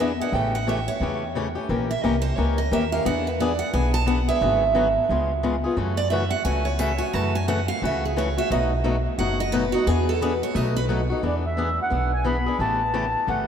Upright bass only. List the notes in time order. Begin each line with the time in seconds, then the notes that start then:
Already playing: E2
0.33 A1
1.00 E2
1.69 A#1
2.04 C2
2.38 C#2
2.71 D#2
3.05 E2
3.74 B1
4.41 G#1
5.09 C#2
5.77 F#2
6.45 C#2
7.14 F#2
7.82 C#2
8.51 B1
9.18 F#1
9.87 E2
10.55 B1
11.23 E2
11.91 B1
12.59 A1
13.27 G1